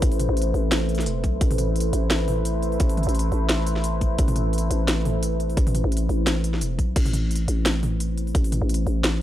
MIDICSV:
0, 0, Header, 1, 4, 480
1, 0, Start_track
1, 0, Key_signature, 0, "minor"
1, 0, Tempo, 346821
1, 32, Time_signature, 4, 2, 24, 8
1, 12763, End_track
2, 0, Start_track
2, 0, Title_t, "Ambient pad"
2, 0, Program_c, 0, 92
2, 0, Note_on_c, 0, 57, 90
2, 0, Note_on_c, 0, 64, 74
2, 0, Note_on_c, 0, 71, 87
2, 0, Note_on_c, 0, 72, 75
2, 12763, Note_off_c, 0, 57, 0
2, 12763, Note_off_c, 0, 64, 0
2, 12763, Note_off_c, 0, 71, 0
2, 12763, Note_off_c, 0, 72, 0
2, 12763, End_track
3, 0, Start_track
3, 0, Title_t, "808-style bass"
3, 0, Program_c, 1, 38
3, 31, Note_on_c, 1, 33, 103
3, 387, Note_off_c, 1, 33, 0
3, 401, Note_on_c, 1, 33, 100
3, 736, Note_off_c, 1, 33, 0
3, 750, Note_on_c, 1, 33, 86
3, 1471, Note_on_c, 1, 28, 86
3, 1491, Note_off_c, 1, 33, 0
3, 1713, Note_on_c, 1, 35, 86
3, 1733, Note_off_c, 1, 28, 0
3, 1935, Note_off_c, 1, 35, 0
3, 1953, Note_on_c, 1, 33, 101
3, 2659, Note_off_c, 1, 33, 0
3, 2672, Note_on_c, 1, 33, 82
3, 3858, Note_off_c, 1, 33, 0
3, 3877, Note_on_c, 1, 33, 99
3, 4230, Note_off_c, 1, 33, 0
3, 4247, Note_on_c, 1, 33, 96
3, 4579, Note_off_c, 1, 33, 0
3, 4593, Note_on_c, 1, 33, 83
3, 5778, Note_off_c, 1, 33, 0
3, 5794, Note_on_c, 1, 33, 102
3, 6499, Note_off_c, 1, 33, 0
3, 6512, Note_on_c, 1, 33, 79
3, 7698, Note_off_c, 1, 33, 0
3, 7711, Note_on_c, 1, 33, 98
3, 8067, Note_off_c, 1, 33, 0
3, 8084, Note_on_c, 1, 33, 94
3, 8418, Note_off_c, 1, 33, 0
3, 8432, Note_on_c, 1, 33, 80
3, 9153, Note_on_c, 1, 28, 88
3, 9174, Note_off_c, 1, 33, 0
3, 9393, Note_on_c, 1, 35, 86
3, 9414, Note_off_c, 1, 28, 0
3, 9615, Note_off_c, 1, 35, 0
3, 9634, Note_on_c, 1, 33, 99
3, 10339, Note_off_c, 1, 33, 0
3, 10353, Note_on_c, 1, 33, 81
3, 11538, Note_off_c, 1, 33, 0
3, 11554, Note_on_c, 1, 33, 103
3, 11908, Note_off_c, 1, 33, 0
3, 11925, Note_on_c, 1, 33, 94
3, 12258, Note_off_c, 1, 33, 0
3, 12270, Note_on_c, 1, 33, 83
3, 12763, Note_off_c, 1, 33, 0
3, 12763, End_track
4, 0, Start_track
4, 0, Title_t, "Drums"
4, 29, Note_on_c, 9, 42, 81
4, 30, Note_on_c, 9, 36, 121
4, 161, Note_on_c, 9, 46, 60
4, 168, Note_off_c, 9, 42, 0
4, 169, Note_off_c, 9, 36, 0
4, 270, Note_on_c, 9, 42, 68
4, 270, Note_on_c, 9, 45, 49
4, 299, Note_off_c, 9, 46, 0
4, 409, Note_off_c, 9, 42, 0
4, 409, Note_off_c, 9, 45, 0
4, 510, Note_on_c, 9, 42, 48
4, 577, Note_off_c, 9, 42, 0
4, 577, Note_on_c, 9, 42, 62
4, 715, Note_off_c, 9, 42, 0
4, 751, Note_on_c, 9, 46, 36
4, 889, Note_off_c, 9, 46, 0
4, 991, Note_on_c, 9, 38, 127
4, 991, Note_on_c, 9, 42, 79
4, 1129, Note_off_c, 9, 38, 0
4, 1129, Note_off_c, 9, 42, 0
4, 1229, Note_on_c, 9, 42, 28
4, 1310, Note_off_c, 9, 42, 0
4, 1310, Note_on_c, 9, 42, 38
4, 1363, Note_on_c, 9, 38, 39
4, 1391, Note_off_c, 9, 42, 0
4, 1391, Note_on_c, 9, 42, 50
4, 1471, Note_off_c, 9, 42, 0
4, 1471, Note_on_c, 9, 42, 78
4, 1501, Note_off_c, 9, 38, 0
4, 1609, Note_off_c, 9, 42, 0
4, 1712, Note_on_c, 9, 36, 64
4, 1712, Note_on_c, 9, 42, 36
4, 1850, Note_off_c, 9, 36, 0
4, 1850, Note_off_c, 9, 42, 0
4, 1952, Note_on_c, 9, 36, 120
4, 1952, Note_on_c, 9, 42, 78
4, 2085, Note_on_c, 9, 45, 58
4, 2085, Note_on_c, 9, 46, 67
4, 2090, Note_off_c, 9, 36, 0
4, 2090, Note_off_c, 9, 42, 0
4, 2191, Note_off_c, 9, 45, 0
4, 2191, Note_on_c, 9, 42, 63
4, 2191, Note_on_c, 9, 45, 51
4, 2224, Note_off_c, 9, 46, 0
4, 2330, Note_off_c, 9, 42, 0
4, 2330, Note_off_c, 9, 45, 0
4, 2431, Note_on_c, 9, 42, 48
4, 2497, Note_off_c, 9, 42, 0
4, 2497, Note_on_c, 9, 42, 64
4, 2636, Note_off_c, 9, 42, 0
4, 2672, Note_on_c, 9, 42, 75
4, 2811, Note_off_c, 9, 42, 0
4, 2912, Note_on_c, 9, 38, 120
4, 2912, Note_on_c, 9, 42, 75
4, 3051, Note_off_c, 9, 38, 0
4, 3051, Note_off_c, 9, 42, 0
4, 3153, Note_on_c, 9, 45, 56
4, 3153, Note_on_c, 9, 46, 64
4, 3291, Note_off_c, 9, 45, 0
4, 3291, Note_off_c, 9, 46, 0
4, 3393, Note_on_c, 9, 42, 79
4, 3532, Note_off_c, 9, 42, 0
4, 3633, Note_on_c, 9, 42, 34
4, 3766, Note_on_c, 9, 46, 38
4, 3772, Note_off_c, 9, 42, 0
4, 3873, Note_on_c, 9, 42, 80
4, 3876, Note_on_c, 9, 36, 115
4, 3905, Note_off_c, 9, 46, 0
4, 4007, Note_on_c, 9, 46, 70
4, 4011, Note_off_c, 9, 42, 0
4, 4015, Note_off_c, 9, 36, 0
4, 4115, Note_on_c, 9, 42, 28
4, 4115, Note_on_c, 9, 45, 51
4, 4145, Note_off_c, 9, 46, 0
4, 4195, Note_off_c, 9, 42, 0
4, 4195, Note_on_c, 9, 42, 37
4, 4253, Note_off_c, 9, 45, 0
4, 4273, Note_off_c, 9, 42, 0
4, 4273, Note_on_c, 9, 42, 51
4, 4354, Note_off_c, 9, 42, 0
4, 4354, Note_on_c, 9, 42, 48
4, 4419, Note_off_c, 9, 42, 0
4, 4419, Note_on_c, 9, 42, 65
4, 4557, Note_off_c, 9, 42, 0
4, 4593, Note_on_c, 9, 46, 39
4, 4732, Note_off_c, 9, 46, 0
4, 4834, Note_on_c, 9, 38, 121
4, 4834, Note_on_c, 9, 42, 75
4, 4972, Note_off_c, 9, 38, 0
4, 4972, Note_off_c, 9, 42, 0
4, 5073, Note_on_c, 9, 42, 62
4, 5205, Note_on_c, 9, 38, 33
4, 5211, Note_off_c, 9, 42, 0
4, 5312, Note_on_c, 9, 42, 75
4, 5344, Note_off_c, 9, 38, 0
4, 5451, Note_off_c, 9, 42, 0
4, 5553, Note_on_c, 9, 42, 36
4, 5554, Note_on_c, 9, 36, 59
4, 5692, Note_off_c, 9, 42, 0
4, 5693, Note_off_c, 9, 36, 0
4, 5792, Note_on_c, 9, 42, 79
4, 5794, Note_on_c, 9, 36, 110
4, 5924, Note_on_c, 9, 45, 64
4, 5924, Note_on_c, 9, 46, 65
4, 5930, Note_off_c, 9, 42, 0
4, 5932, Note_off_c, 9, 36, 0
4, 6031, Note_off_c, 9, 45, 0
4, 6031, Note_on_c, 9, 42, 63
4, 6031, Note_on_c, 9, 45, 55
4, 6062, Note_off_c, 9, 46, 0
4, 6169, Note_off_c, 9, 42, 0
4, 6169, Note_off_c, 9, 45, 0
4, 6271, Note_on_c, 9, 42, 49
4, 6338, Note_off_c, 9, 42, 0
4, 6338, Note_on_c, 9, 42, 62
4, 6477, Note_off_c, 9, 42, 0
4, 6514, Note_on_c, 9, 42, 75
4, 6652, Note_off_c, 9, 42, 0
4, 6754, Note_on_c, 9, 38, 119
4, 6754, Note_on_c, 9, 42, 81
4, 6892, Note_off_c, 9, 38, 0
4, 6892, Note_off_c, 9, 42, 0
4, 6995, Note_on_c, 9, 45, 62
4, 6995, Note_on_c, 9, 46, 71
4, 7134, Note_off_c, 9, 45, 0
4, 7134, Note_off_c, 9, 46, 0
4, 7233, Note_on_c, 9, 42, 83
4, 7372, Note_off_c, 9, 42, 0
4, 7473, Note_on_c, 9, 42, 37
4, 7606, Note_on_c, 9, 46, 40
4, 7612, Note_off_c, 9, 42, 0
4, 7711, Note_on_c, 9, 36, 113
4, 7712, Note_on_c, 9, 42, 86
4, 7744, Note_off_c, 9, 46, 0
4, 7845, Note_on_c, 9, 45, 64
4, 7845, Note_on_c, 9, 46, 66
4, 7849, Note_off_c, 9, 36, 0
4, 7850, Note_off_c, 9, 42, 0
4, 7953, Note_off_c, 9, 45, 0
4, 7953, Note_on_c, 9, 42, 63
4, 7953, Note_on_c, 9, 45, 53
4, 7983, Note_off_c, 9, 46, 0
4, 8092, Note_off_c, 9, 42, 0
4, 8092, Note_off_c, 9, 45, 0
4, 8192, Note_on_c, 9, 42, 51
4, 8259, Note_off_c, 9, 42, 0
4, 8259, Note_on_c, 9, 42, 66
4, 8398, Note_off_c, 9, 42, 0
4, 8434, Note_on_c, 9, 46, 39
4, 8572, Note_off_c, 9, 46, 0
4, 8673, Note_on_c, 9, 38, 114
4, 8673, Note_on_c, 9, 42, 82
4, 8812, Note_off_c, 9, 38, 0
4, 8812, Note_off_c, 9, 42, 0
4, 8914, Note_on_c, 9, 42, 65
4, 9047, Note_on_c, 9, 38, 34
4, 9053, Note_off_c, 9, 42, 0
4, 9153, Note_on_c, 9, 42, 83
4, 9186, Note_off_c, 9, 38, 0
4, 9291, Note_off_c, 9, 42, 0
4, 9392, Note_on_c, 9, 36, 61
4, 9393, Note_on_c, 9, 42, 39
4, 9531, Note_off_c, 9, 36, 0
4, 9532, Note_off_c, 9, 42, 0
4, 9633, Note_on_c, 9, 36, 116
4, 9633, Note_on_c, 9, 42, 83
4, 9633, Note_on_c, 9, 49, 80
4, 9764, Note_on_c, 9, 45, 61
4, 9764, Note_on_c, 9, 46, 65
4, 9771, Note_off_c, 9, 42, 0
4, 9771, Note_off_c, 9, 49, 0
4, 9772, Note_off_c, 9, 36, 0
4, 9875, Note_off_c, 9, 45, 0
4, 9875, Note_on_c, 9, 42, 67
4, 9875, Note_on_c, 9, 45, 55
4, 9903, Note_off_c, 9, 46, 0
4, 10013, Note_off_c, 9, 42, 0
4, 10013, Note_off_c, 9, 45, 0
4, 10114, Note_on_c, 9, 42, 52
4, 10180, Note_off_c, 9, 42, 0
4, 10180, Note_on_c, 9, 42, 69
4, 10318, Note_off_c, 9, 42, 0
4, 10354, Note_on_c, 9, 42, 78
4, 10493, Note_off_c, 9, 42, 0
4, 10596, Note_on_c, 9, 38, 124
4, 10596, Note_on_c, 9, 42, 82
4, 10734, Note_off_c, 9, 38, 0
4, 10734, Note_off_c, 9, 42, 0
4, 10836, Note_on_c, 9, 45, 61
4, 10836, Note_on_c, 9, 46, 66
4, 10975, Note_off_c, 9, 45, 0
4, 10975, Note_off_c, 9, 46, 0
4, 11076, Note_on_c, 9, 42, 86
4, 11215, Note_off_c, 9, 42, 0
4, 11315, Note_on_c, 9, 42, 39
4, 11449, Note_on_c, 9, 46, 38
4, 11453, Note_off_c, 9, 42, 0
4, 11553, Note_on_c, 9, 36, 117
4, 11555, Note_on_c, 9, 42, 86
4, 11587, Note_off_c, 9, 46, 0
4, 11686, Note_on_c, 9, 46, 61
4, 11692, Note_off_c, 9, 36, 0
4, 11693, Note_off_c, 9, 42, 0
4, 11794, Note_on_c, 9, 42, 69
4, 11794, Note_on_c, 9, 45, 54
4, 11825, Note_off_c, 9, 46, 0
4, 11933, Note_off_c, 9, 42, 0
4, 11933, Note_off_c, 9, 45, 0
4, 12033, Note_on_c, 9, 42, 54
4, 12099, Note_off_c, 9, 42, 0
4, 12099, Note_on_c, 9, 42, 69
4, 12238, Note_off_c, 9, 42, 0
4, 12271, Note_on_c, 9, 46, 36
4, 12409, Note_off_c, 9, 46, 0
4, 12512, Note_on_c, 9, 38, 125
4, 12512, Note_on_c, 9, 42, 86
4, 12650, Note_off_c, 9, 38, 0
4, 12650, Note_off_c, 9, 42, 0
4, 12763, End_track
0, 0, End_of_file